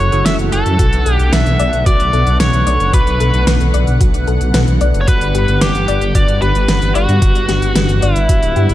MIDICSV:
0, 0, Header, 1, 7, 480
1, 0, Start_track
1, 0, Tempo, 535714
1, 710, Time_signature, 4, 2, 24, 8
1, 7833, End_track
2, 0, Start_track
2, 0, Title_t, "Lead electric guitar"
2, 0, Program_c, 0, 29
2, 0, Note_on_c, 0, 73, 103
2, 229, Note_off_c, 0, 73, 0
2, 233, Note_on_c, 0, 76, 101
2, 297, Note_off_c, 0, 76, 0
2, 471, Note_on_c, 0, 69, 101
2, 1008, Note_off_c, 0, 69, 0
2, 1008, Note_on_c, 0, 67, 101
2, 1193, Note_on_c, 0, 76, 106
2, 1212, Note_off_c, 0, 67, 0
2, 1638, Note_off_c, 0, 76, 0
2, 1671, Note_on_c, 0, 74, 102
2, 2117, Note_off_c, 0, 74, 0
2, 2152, Note_on_c, 0, 73, 95
2, 2597, Note_off_c, 0, 73, 0
2, 2633, Note_on_c, 0, 71, 91
2, 3078, Note_off_c, 0, 71, 0
2, 4488, Note_on_c, 0, 73, 75
2, 4550, Note_off_c, 0, 73, 0
2, 4553, Note_on_c, 0, 71, 103
2, 4998, Note_off_c, 0, 71, 0
2, 5033, Note_on_c, 0, 67, 99
2, 5512, Note_on_c, 0, 74, 110
2, 5525, Note_off_c, 0, 67, 0
2, 5734, Note_off_c, 0, 74, 0
2, 5752, Note_on_c, 0, 71, 105
2, 6197, Note_off_c, 0, 71, 0
2, 6230, Note_on_c, 0, 66, 86
2, 7305, Note_off_c, 0, 66, 0
2, 7305, Note_on_c, 0, 64, 86
2, 7833, Note_off_c, 0, 64, 0
2, 7833, End_track
3, 0, Start_track
3, 0, Title_t, "Synth arpeggio sound"
3, 0, Program_c, 1, 84
3, 710, Note_on_c, 1, 66, 84
3, 938, Note_off_c, 1, 66, 0
3, 950, Note_on_c, 1, 69, 78
3, 1063, Note_off_c, 1, 69, 0
3, 1190, Note_on_c, 1, 71, 75
3, 1418, Note_off_c, 1, 71, 0
3, 1430, Note_on_c, 1, 74, 99
3, 1543, Note_off_c, 1, 74, 0
3, 1670, Note_on_c, 1, 66, 82
3, 1898, Note_off_c, 1, 66, 0
3, 1911, Note_on_c, 1, 69, 78
3, 2024, Note_off_c, 1, 69, 0
3, 2150, Note_on_c, 1, 71, 76
3, 2378, Note_off_c, 1, 71, 0
3, 2391, Note_on_c, 1, 74, 99
3, 2504, Note_off_c, 1, 74, 0
3, 2631, Note_on_c, 1, 66, 84
3, 2858, Note_off_c, 1, 66, 0
3, 2871, Note_on_c, 1, 69, 77
3, 2984, Note_off_c, 1, 69, 0
3, 3111, Note_on_c, 1, 71, 76
3, 3338, Note_off_c, 1, 71, 0
3, 3351, Note_on_c, 1, 74, 100
3, 3464, Note_off_c, 1, 74, 0
3, 3590, Note_on_c, 1, 66, 83
3, 3818, Note_off_c, 1, 66, 0
3, 3830, Note_on_c, 1, 69, 75
3, 3943, Note_off_c, 1, 69, 0
3, 4070, Note_on_c, 1, 71, 76
3, 4298, Note_off_c, 1, 71, 0
3, 4311, Note_on_c, 1, 74, 100
3, 4424, Note_off_c, 1, 74, 0
3, 4551, Note_on_c, 1, 66, 85
3, 4778, Note_off_c, 1, 66, 0
3, 4791, Note_on_c, 1, 67, 77
3, 4904, Note_off_c, 1, 67, 0
3, 5031, Note_on_c, 1, 71, 75
3, 5258, Note_off_c, 1, 71, 0
3, 5271, Note_on_c, 1, 74, 104
3, 5384, Note_off_c, 1, 74, 0
3, 5510, Note_on_c, 1, 66, 84
3, 5738, Note_off_c, 1, 66, 0
3, 5751, Note_on_c, 1, 67, 77
3, 5864, Note_off_c, 1, 67, 0
3, 5991, Note_on_c, 1, 71, 77
3, 6218, Note_off_c, 1, 71, 0
3, 6231, Note_on_c, 1, 74, 102
3, 6344, Note_off_c, 1, 74, 0
3, 6471, Note_on_c, 1, 66, 84
3, 6698, Note_off_c, 1, 66, 0
3, 6711, Note_on_c, 1, 67, 80
3, 6824, Note_off_c, 1, 67, 0
3, 6951, Note_on_c, 1, 71, 74
3, 7178, Note_off_c, 1, 71, 0
3, 7191, Note_on_c, 1, 74, 98
3, 7304, Note_off_c, 1, 74, 0
3, 7430, Note_on_c, 1, 66, 82
3, 7658, Note_off_c, 1, 66, 0
3, 7670, Note_on_c, 1, 67, 78
3, 7833, Note_off_c, 1, 67, 0
3, 7833, End_track
4, 0, Start_track
4, 0, Title_t, "Tine electric piano"
4, 0, Program_c, 2, 4
4, 110, Note_on_c, 2, 64, 92
4, 110, Note_on_c, 2, 66, 87
4, 110, Note_on_c, 2, 69, 100
4, 681, Note_off_c, 2, 64, 0
4, 681, Note_off_c, 2, 66, 0
4, 681, Note_off_c, 2, 69, 0
4, 7833, End_track
5, 0, Start_track
5, 0, Title_t, "Analog synth pad"
5, 0, Program_c, 3, 89
5, 0, Note_on_c, 3, 49, 80
5, 0, Note_on_c, 3, 52, 74
5, 0, Note_on_c, 3, 57, 72
5, 0, Note_on_c, 3, 78, 86
5, 673, Note_off_c, 3, 52, 0
5, 673, Note_off_c, 3, 57, 0
5, 674, Note_off_c, 3, 49, 0
5, 710, Note_on_c, 3, 50, 77
5, 710, Note_on_c, 3, 59, 71
5, 711, Note_on_c, 3, 57, 70
5, 4514, Note_off_c, 3, 57, 0
5, 4554, Note_on_c, 3, 55, 72
5, 7833, Note_off_c, 3, 50, 0
5, 7833, Note_off_c, 3, 55, 0
5, 7833, Note_off_c, 3, 59, 0
5, 7833, Note_off_c, 3, 78, 0
5, 7833, End_track
6, 0, Start_track
6, 0, Title_t, "Detuned saw bass"
6, 0, Program_c, 4, 39
6, 0, Note_on_c, 4, 30, 97
6, 92, Note_off_c, 4, 30, 0
6, 112, Note_on_c, 4, 30, 80
6, 212, Note_off_c, 4, 30, 0
6, 232, Note_on_c, 4, 30, 106
6, 332, Note_off_c, 4, 30, 0
6, 351, Note_on_c, 4, 30, 75
6, 451, Note_off_c, 4, 30, 0
6, 472, Note_on_c, 4, 30, 93
6, 572, Note_off_c, 4, 30, 0
6, 593, Note_on_c, 4, 42, 83
6, 692, Note_off_c, 4, 42, 0
6, 710, Note_on_c, 4, 35, 97
6, 811, Note_off_c, 4, 35, 0
6, 832, Note_on_c, 4, 35, 73
6, 932, Note_off_c, 4, 35, 0
6, 952, Note_on_c, 4, 35, 92
6, 1052, Note_off_c, 4, 35, 0
6, 1072, Note_on_c, 4, 35, 83
6, 1172, Note_off_c, 4, 35, 0
6, 1192, Note_on_c, 4, 35, 101
6, 1292, Note_off_c, 4, 35, 0
6, 1311, Note_on_c, 4, 35, 74
6, 1412, Note_off_c, 4, 35, 0
6, 1430, Note_on_c, 4, 35, 93
6, 1531, Note_off_c, 4, 35, 0
6, 1551, Note_on_c, 4, 35, 80
6, 1652, Note_off_c, 4, 35, 0
6, 1670, Note_on_c, 4, 35, 101
6, 1771, Note_off_c, 4, 35, 0
6, 1791, Note_on_c, 4, 35, 76
6, 1891, Note_off_c, 4, 35, 0
6, 1911, Note_on_c, 4, 35, 95
6, 2012, Note_off_c, 4, 35, 0
6, 2031, Note_on_c, 4, 35, 81
6, 2132, Note_off_c, 4, 35, 0
6, 2150, Note_on_c, 4, 35, 105
6, 2251, Note_off_c, 4, 35, 0
6, 2272, Note_on_c, 4, 35, 73
6, 2372, Note_off_c, 4, 35, 0
6, 2391, Note_on_c, 4, 35, 94
6, 2492, Note_off_c, 4, 35, 0
6, 2510, Note_on_c, 4, 30, 83
6, 2611, Note_off_c, 4, 30, 0
6, 2630, Note_on_c, 4, 35, 99
6, 2731, Note_off_c, 4, 35, 0
6, 2751, Note_on_c, 4, 35, 75
6, 2851, Note_off_c, 4, 35, 0
6, 2872, Note_on_c, 4, 35, 92
6, 2972, Note_off_c, 4, 35, 0
6, 2991, Note_on_c, 4, 35, 82
6, 3092, Note_off_c, 4, 35, 0
6, 3111, Note_on_c, 4, 35, 100
6, 3211, Note_off_c, 4, 35, 0
6, 3232, Note_on_c, 4, 35, 72
6, 3332, Note_off_c, 4, 35, 0
6, 3351, Note_on_c, 4, 35, 95
6, 3451, Note_off_c, 4, 35, 0
6, 3472, Note_on_c, 4, 35, 82
6, 3572, Note_off_c, 4, 35, 0
6, 3590, Note_on_c, 4, 35, 99
6, 3691, Note_off_c, 4, 35, 0
6, 3711, Note_on_c, 4, 35, 77
6, 3812, Note_off_c, 4, 35, 0
6, 3831, Note_on_c, 4, 35, 93
6, 3931, Note_off_c, 4, 35, 0
6, 3952, Note_on_c, 4, 35, 80
6, 4052, Note_off_c, 4, 35, 0
6, 4072, Note_on_c, 4, 35, 104
6, 4172, Note_off_c, 4, 35, 0
6, 4192, Note_on_c, 4, 35, 78
6, 4292, Note_off_c, 4, 35, 0
6, 4312, Note_on_c, 4, 35, 93
6, 4412, Note_off_c, 4, 35, 0
6, 4431, Note_on_c, 4, 30, 83
6, 4532, Note_off_c, 4, 30, 0
6, 4551, Note_on_c, 4, 31, 100
6, 4652, Note_off_c, 4, 31, 0
6, 4672, Note_on_c, 4, 31, 74
6, 4772, Note_off_c, 4, 31, 0
6, 4791, Note_on_c, 4, 31, 95
6, 4892, Note_off_c, 4, 31, 0
6, 4910, Note_on_c, 4, 31, 80
6, 5011, Note_off_c, 4, 31, 0
6, 5030, Note_on_c, 4, 31, 102
6, 5131, Note_off_c, 4, 31, 0
6, 5150, Note_on_c, 4, 31, 72
6, 5251, Note_off_c, 4, 31, 0
6, 5270, Note_on_c, 4, 31, 91
6, 5371, Note_off_c, 4, 31, 0
6, 5390, Note_on_c, 4, 31, 81
6, 5491, Note_off_c, 4, 31, 0
6, 5511, Note_on_c, 4, 31, 100
6, 5612, Note_off_c, 4, 31, 0
6, 5631, Note_on_c, 4, 31, 76
6, 5732, Note_off_c, 4, 31, 0
6, 5751, Note_on_c, 4, 31, 94
6, 5851, Note_off_c, 4, 31, 0
6, 5870, Note_on_c, 4, 31, 84
6, 5971, Note_off_c, 4, 31, 0
6, 5991, Note_on_c, 4, 31, 105
6, 6091, Note_off_c, 4, 31, 0
6, 6110, Note_on_c, 4, 31, 76
6, 6211, Note_off_c, 4, 31, 0
6, 6229, Note_on_c, 4, 31, 94
6, 6331, Note_off_c, 4, 31, 0
6, 6350, Note_on_c, 4, 43, 84
6, 6451, Note_off_c, 4, 43, 0
6, 6471, Note_on_c, 4, 31, 98
6, 6571, Note_off_c, 4, 31, 0
6, 6590, Note_on_c, 4, 31, 78
6, 6691, Note_off_c, 4, 31, 0
6, 6709, Note_on_c, 4, 31, 92
6, 6810, Note_off_c, 4, 31, 0
6, 6830, Note_on_c, 4, 31, 80
6, 6931, Note_off_c, 4, 31, 0
6, 6950, Note_on_c, 4, 31, 105
6, 7051, Note_off_c, 4, 31, 0
6, 7069, Note_on_c, 4, 31, 72
6, 7171, Note_off_c, 4, 31, 0
6, 7191, Note_on_c, 4, 31, 94
6, 7291, Note_off_c, 4, 31, 0
6, 7311, Note_on_c, 4, 31, 79
6, 7412, Note_off_c, 4, 31, 0
6, 7430, Note_on_c, 4, 31, 100
6, 7531, Note_off_c, 4, 31, 0
6, 7551, Note_on_c, 4, 26, 77
6, 7651, Note_off_c, 4, 26, 0
6, 7670, Note_on_c, 4, 43, 97
6, 7771, Note_off_c, 4, 43, 0
6, 7791, Note_on_c, 4, 31, 83
6, 7833, Note_off_c, 4, 31, 0
6, 7833, End_track
7, 0, Start_track
7, 0, Title_t, "Drums"
7, 110, Note_on_c, 9, 42, 39
7, 200, Note_off_c, 9, 42, 0
7, 230, Note_on_c, 9, 38, 123
7, 230, Note_on_c, 9, 42, 90
7, 320, Note_off_c, 9, 38, 0
7, 320, Note_off_c, 9, 42, 0
7, 350, Note_on_c, 9, 42, 38
7, 440, Note_off_c, 9, 42, 0
7, 470, Note_on_c, 9, 42, 66
7, 559, Note_off_c, 9, 42, 0
7, 589, Note_on_c, 9, 42, 39
7, 679, Note_off_c, 9, 42, 0
7, 709, Note_on_c, 9, 42, 85
7, 710, Note_on_c, 9, 36, 116
7, 799, Note_off_c, 9, 36, 0
7, 799, Note_off_c, 9, 42, 0
7, 830, Note_on_c, 9, 42, 38
7, 920, Note_off_c, 9, 42, 0
7, 950, Note_on_c, 9, 42, 62
7, 1040, Note_off_c, 9, 42, 0
7, 1070, Note_on_c, 9, 42, 37
7, 1159, Note_off_c, 9, 42, 0
7, 1189, Note_on_c, 9, 38, 115
7, 1189, Note_on_c, 9, 42, 86
7, 1278, Note_off_c, 9, 38, 0
7, 1278, Note_off_c, 9, 42, 0
7, 1310, Note_on_c, 9, 42, 37
7, 1399, Note_off_c, 9, 42, 0
7, 1429, Note_on_c, 9, 42, 63
7, 1519, Note_off_c, 9, 42, 0
7, 1549, Note_on_c, 9, 42, 37
7, 1639, Note_off_c, 9, 42, 0
7, 1669, Note_on_c, 9, 42, 86
7, 1670, Note_on_c, 9, 36, 117
7, 1759, Note_off_c, 9, 36, 0
7, 1759, Note_off_c, 9, 42, 0
7, 1790, Note_on_c, 9, 42, 38
7, 1880, Note_off_c, 9, 42, 0
7, 1911, Note_on_c, 9, 42, 36
7, 2001, Note_off_c, 9, 42, 0
7, 2031, Note_on_c, 9, 42, 38
7, 2120, Note_off_c, 9, 42, 0
7, 2151, Note_on_c, 9, 38, 117
7, 2151, Note_on_c, 9, 42, 89
7, 2240, Note_off_c, 9, 38, 0
7, 2240, Note_off_c, 9, 42, 0
7, 2270, Note_on_c, 9, 42, 37
7, 2360, Note_off_c, 9, 42, 0
7, 2390, Note_on_c, 9, 42, 64
7, 2480, Note_off_c, 9, 42, 0
7, 2510, Note_on_c, 9, 42, 38
7, 2600, Note_off_c, 9, 42, 0
7, 2629, Note_on_c, 9, 36, 109
7, 2630, Note_on_c, 9, 42, 83
7, 2719, Note_off_c, 9, 36, 0
7, 2720, Note_off_c, 9, 42, 0
7, 2751, Note_on_c, 9, 42, 36
7, 2840, Note_off_c, 9, 42, 0
7, 2870, Note_on_c, 9, 42, 64
7, 2960, Note_off_c, 9, 42, 0
7, 2990, Note_on_c, 9, 42, 38
7, 3079, Note_off_c, 9, 42, 0
7, 3110, Note_on_c, 9, 38, 108
7, 3110, Note_on_c, 9, 42, 85
7, 3200, Note_off_c, 9, 38, 0
7, 3200, Note_off_c, 9, 42, 0
7, 3230, Note_on_c, 9, 42, 37
7, 3320, Note_off_c, 9, 42, 0
7, 3350, Note_on_c, 9, 42, 62
7, 3440, Note_off_c, 9, 42, 0
7, 3470, Note_on_c, 9, 42, 36
7, 3560, Note_off_c, 9, 42, 0
7, 3590, Note_on_c, 9, 36, 110
7, 3590, Note_on_c, 9, 42, 85
7, 3679, Note_off_c, 9, 42, 0
7, 3680, Note_off_c, 9, 36, 0
7, 3710, Note_on_c, 9, 42, 37
7, 3800, Note_off_c, 9, 42, 0
7, 3830, Note_on_c, 9, 42, 35
7, 3919, Note_off_c, 9, 42, 0
7, 3950, Note_on_c, 9, 42, 37
7, 4039, Note_off_c, 9, 42, 0
7, 4069, Note_on_c, 9, 38, 116
7, 4069, Note_on_c, 9, 42, 87
7, 4158, Note_off_c, 9, 38, 0
7, 4158, Note_off_c, 9, 42, 0
7, 4189, Note_on_c, 9, 42, 37
7, 4279, Note_off_c, 9, 42, 0
7, 4309, Note_on_c, 9, 42, 63
7, 4398, Note_off_c, 9, 42, 0
7, 4430, Note_on_c, 9, 42, 38
7, 4519, Note_off_c, 9, 42, 0
7, 4548, Note_on_c, 9, 42, 86
7, 4550, Note_on_c, 9, 36, 111
7, 4638, Note_off_c, 9, 42, 0
7, 4640, Note_off_c, 9, 36, 0
7, 4671, Note_on_c, 9, 42, 39
7, 4760, Note_off_c, 9, 42, 0
7, 4791, Note_on_c, 9, 42, 64
7, 4881, Note_off_c, 9, 42, 0
7, 4911, Note_on_c, 9, 42, 39
7, 5001, Note_off_c, 9, 42, 0
7, 5030, Note_on_c, 9, 38, 111
7, 5030, Note_on_c, 9, 42, 87
7, 5120, Note_off_c, 9, 38, 0
7, 5120, Note_off_c, 9, 42, 0
7, 5151, Note_on_c, 9, 42, 38
7, 5240, Note_off_c, 9, 42, 0
7, 5269, Note_on_c, 9, 42, 64
7, 5359, Note_off_c, 9, 42, 0
7, 5389, Note_on_c, 9, 42, 38
7, 5479, Note_off_c, 9, 42, 0
7, 5510, Note_on_c, 9, 36, 111
7, 5510, Note_on_c, 9, 42, 88
7, 5599, Note_off_c, 9, 42, 0
7, 5600, Note_off_c, 9, 36, 0
7, 5630, Note_on_c, 9, 42, 39
7, 5720, Note_off_c, 9, 42, 0
7, 5750, Note_on_c, 9, 42, 37
7, 5840, Note_off_c, 9, 42, 0
7, 5870, Note_on_c, 9, 42, 39
7, 5960, Note_off_c, 9, 42, 0
7, 5989, Note_on_c, 9, 38, 117
7, 5989, Note_on_c, 9, 42, 89
7, 6079, Note_off_c, 9, 38, 0
7, 6079, Note_off_c, 9, 42, 0
7, 6110, Note_on_c, 9, 42, 39
7, 6200, Note_off_c, 9, 42, 0
7, 6229, Note_on_c, 9, 42, 65
7, 6319, Note_off_c, 9, 42, 0
7, 6350, Note_on_c, 9, 42, 39
7, 6440, Note_off_c, 9, 42, 0
7, 6469, Note_on_c, 9, 42, 90
7, 6470, Note_on_c, 9, 36, 116
7, 6559, Note_off_c, 9, 42, 0
7, 6560, Note_off_c, 9, 36, 0
7, 6589, Note_on_c, 9, 42, 39
7, 6678, Note_off_c, 9, 42, 0
7, 6708, Note_on_c, 9, 38, 59
7, 6708, Note_on_c, 9, 42, 67
7, 6798, Note_off_c, 9, 38, 0
7, 6798, Note_off_c, 9, 42, 0
7, 6829, Note_on_c, 9, 42, 40
7, 6919, Note_off_c, 9, 42, 0
7, 6949, Note_on_c, 9, 38, 109
7, 6949, Note_on_c, 9, 42, 93
7, 7038, Note_off_c, 9, 38, 0
7, 7038, Note_off_c, 9, 42, 0
7, 7069, Note_on_c, 9, 42, 40
7, 7159, Note_off_c, 9, 42, 0
7, 7189, Note_on_c, 9, 42, 66
7, 7279, Note_off_c, 9, 42, 0
7, 7309, Note_on_c, 9, 42, 39
7, 7399, Note_off_c, 9, 42, 0
7, 7428, Note_on_c, 9, 42, 95
7, 7430, Note_on_c, 9, 36, 113
7, 7518, Note_off_c, 9, 42, 0
7, 7519, Note_off_c, 9, 36, 0
7, 7549, Note_on_c, 9, 42, 40
7, 7639, Note_off_c, 9, 42, 0
7, 7670, Note_on_c, 9, 42, 37
7, 7759, Note_off_c, 9, 42, 0
7, 7789, Note_on_c, 9, 42, 40
7, 7833, Note_off_c, 9, 42, 0
7, 7833, End_track
0, 0, End_of_file